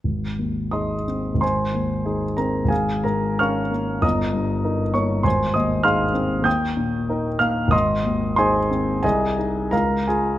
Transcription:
\new Staff \with { instrumentName = "Grand piano" } { \time 2/4 \key aes \major \tempo 4 = 94 << { r4 <ees'' c''' ees'''>4 | <c'' aes'' c'''>4. <bes' bes''>8 | <aes' f'' aes''>8 <bes' bes''>8 <f'' des''' f'''>4 | <ees'' bes'' ees'''>4. <des'' des'''>8 |
<c'' aes'' c'''>8 <ees'' ees'''>8 <f'' c''' f'''>4 | <g'' ees''' g'''>4. <f'' f'''>8 | <ees'' c''' ees'''>4 <c'' aes'' c'''>4 | <aes' ees'' aes''>4 <bes' f'' bes''>8 <aes' aes''>8 | } \\ { aes,,8 ees,8 <ees' aes'>8 c'8 | aes,,8 ees,8 <ees' aes'>8 c'8 | aes,,8 aes,8 <des' bes'>8 bes8 | g,,8 g,8 <ees' bes'>8 bes8 |
aes,,8 ees,8 <ees' aes'>8 c'8 | ees,8 bes,8 <ees' bes'>8 bes8 | aes,,8 ees,8 <ees' aes'>8 c'8 | c,8 <ees' aes'>8 des,8 f'8 | } >> }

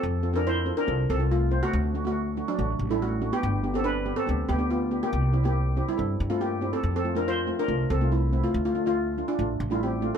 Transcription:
<<
  \new Staff \with { instrumentName = "Steel pan" } { \time 4/4 \key f \major \tempo 4 = 141 <c' a'>8. <d' bes'>16 <e' c''>8. <d' bes'>8. <c' a'>8 <a f'>8. <a ges'>16~ | <a ges'>8. <a fis'>4 <fis d'>4 <g e'>16 <a fis'>8. <b g'>16~ | <b g'>8. <c' a'>16 <d' b'>8. <c' a'>8. <b g'>8 <b f'>8. <bes g'>16~ | <bes g'>8. <bes g'>4 <g e'>4 <a f'>16 <bes g'>8. <c' a'>16~ |
<c' a'>16 <c' a'>8 <d' bes'>16 <f' c''>8. <d' bes'>8. <c' a'>8 <a e'>8. <a f'>16~ | <a f'>16 <a f'>8 <a f'>4 <d' f'>4 <g e'>16 <c' g'>8. a'16 | }
  \new Staff \with { instrumentName = "Steel pan" } { \time 4/4 \key f \major r8 <c' f' a'>16 <c' f' a'>8 r16 <c' f' a'>16 r16 <c' f' a'>8 r16 <c' f' a'>8 r16 <c' f' c''>8 | r8 <a d' fis'>16 <a d' fis'>8 r16 <a d' fis'>16 r16 <a d' fis'>8 r16 <a d' a'>8 r16 <a d' fis'>8 | r8 <b d' g'>16 <b d' g'>8 r16 <b d' g'>16 r16 <b d' g'>8 r16 <b d' g'>8 r16 <b d' g'>8 | r8 <c' e' g'>16 <c' e' g'>8 r16 <c' e' g'>16 r16 <c' e' a'>8 r16 <c' e' a'>8 r16 <c' e' g'>8 |
r8 <a c' f'>16 <a c' f'>8 r16 <a c' f'>16 r16 <a c' f'>8 r16 <a c' f'>8 r16 <a c' e'>8 | r8 <a d' f'>16 <a d' f'>8 r16 <a d' f'>16 r16 <a d' f'>8 r16 <a d' f'>8 r16 <a d' f'>8 | }
  \new Staff \with { instrumentName = "Upright bass" } { \clef bass \time 4/4 \key f \major f,2 c,8 c,4. | d,2 a,,8 a,,4. | g,,2 d,8 d,4. | c,2 g,8 g,4. |
f,2 c,8 c,4. | d,2 a,,8 a,,4. | }
>>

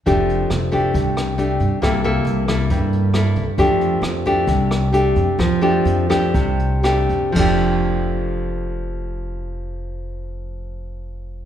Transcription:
<<
  \new Staff \with { instrumentName = "Nylon-string guitar" } { \time 4/4 \key f \major \tempo 4 = 129 << { <a d' g'>4 r8 <a d' g'>4. <a d' g'>4 | <bes e' a'>8 <bes e' a'>4 <bes e' a'>4. <bes e' a'>8 r8 | <a d' g'>4 r8 <a d' g'>4. <a d' g'>4 | r8 <a d' g'>4 <a d' g'>4. <a d' g'>4 |
<f a d' g'>1~ | <f a d' g'>1 | } \\ { f2 c2 | c2 g,2 | f2 c2 | f2 c2 |
r1 | r1 | } >> }
  \new Staff \with { instrumentName = "Upright bass" } { \clef bass \time 4/4 \key f \major f,,4 f,,4 c,4. g,16 r16 | c,4 c,4 g,4. c,16 r16 | f,4 f,4 c,4. f,16 r16 | f,4 f,4 c,4. f,16 r16 |
f,,1~ | f,,1 | }
  \new DrumStaff \with { instrumentName = "Drums" } \drummode { \time 4/4 <hh bd>8 hh8 <hh ss>8 <hh bd>8 <hh bd>8 <hh ss>8 hh8 <hh bd>8 | <hh bd ss>8 hh8 hh8 <hh bd ss>8 <hh bd>8 hh8 <hh ss>8 <hh bd>8 | <hh bd>8 hh8 <hh ss>8 <hh bd>8 <hh bd>8 <hh ss>8 hh8 <hh bd>8 | <hh bd ss>8 hh8 hh8 <hh bd ss>8 <hh bd>8 hh8 <hh ss>8 <hh bd>8 |
<cymc bd>4 r4 r4 r4 | r4 r4 r4 r4 | }
>>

